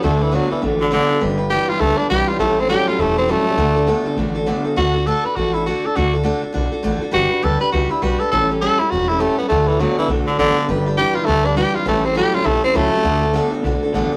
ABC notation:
X:1
M:4/4
L:1/8
Q:"Swing" 1/4=203
K:D
V:1 name="Steel-string acoustic guitar"
[D,A,DFA] [DFA] [D,A,DFA] [DFA] [A,DFA] [DFA] [D,A,DFA] [DFA] | [G,DGB] [DGB] [G,DGB] [DGB] [G,DGB] [DGB] [G,DGB] [DGB] | [A,,E,G,CGA] [G,CGA] [A,,E,G,CGA] [G,CGA] [G,CGA] [G,CGA] [A,,E,G,CGA] [G,CGA] | [D,A,DFA] [DFA] [D,A,DFA] [DFA] [A,DFA] [DFA] [D,A,DFA] [DFA] |
[D,A,DFA] [DFA] [D,A,DFA] [DFA] [A,DFA] [DFA] [D,A,DFA] [DFA] | [D,A,DFA] [DFA] [D,A,DFA] [FA] [A,DFA] [DFA] [D,A,DFA] [DFA] | [G,DGB] [DGB] [G,DGB] [DGB] [G,DGB] [DGB] [G,DGB] [DGB] | [A,,E,G,CGA] [G,CGA] [A,,E,G,CGA] [G,CGA] [G,CGA] [G,CGA] [A,,E,G,CGA] [G,CGA] |
[D,A,DFA] [DFA] [D,A,DFA] [DFA] [A,DFA] [DFA] [D,A,DFA] [DFA] | [G,DGB] [DGB] [G,DGB] [DGB] [G,DGB] [DGB] [G,DGB] [DGB] | [A,,E,G,CGA] [G,CGA] [A,,E,G,CGA] [G,CGA] [G,CGA] [G,CGA] [A,,E,G,CGA] [G,CGA] | [D,A,DFA] [DFA] [D,A,DFA] [DFA] [A,DFA] [DFA] [D,A,DFA] [DFA] |]
V:2 name="Tenor saxophone"
A, E, F, E, z D, D,2 | z2 G =F A, D G F | A, =C G =F A, C A,2- | A,4 z4 |
F2 A B F E F A | F z6 z | F2 A B F E F A | A z A E F E A, B, |
A, E, F, E, z D, D,2 | z2 G =F A, D G F | A, =C G =F A, C A,2- | A,4 z4 |]
V:3 name="Clean electric guitar" clef=bass
[D,A,]2 [D,B,]2 [D,A,]2 [D,B,]2 | [G,,D,]2 [G,,E,]2 [G,,D,]2 [G,,E,]2 | [A,,E,]2 [A,,F,]2 [A,,E,]2 [A,,F,]2 | [D,A,]2 [D,B,]2 [D,A,]2 [D,B,]2 |
z8 | z8 | z8 | z8 |
[D,A,]2 [D,B,]2 [D,A,]2 [D,B,]2 | [G,,D,]2 [G,,E,]2 [G,,D,]2 [G,,E,]2 | [A,,E,]2 [A,,F,]2 [A,,E,]2 [A,,F,]2 | [D,A,]2 [D,B,]2 [D,A,]2 [D,B,]2 |]
V:4 name="Upright bass" clef=bass
D,,3 z A,,,3 z | G,,,3 z C,, z B,,, z | A,,,3 z E,,,3 z | D,,3 z A,,,3 z |
D,,3 z A,,,3 z | D,,3 z B,,, z A,,, z | G,,, z D,, z C,, z B,,, z | A,,,3 z E,,,3 z |
D,,3 z B,,, z A,,, z | G,,,3 z D,,3 z | A,,,3 z B,,, z C,, z | D,,3 z B,,, z A,,, z |]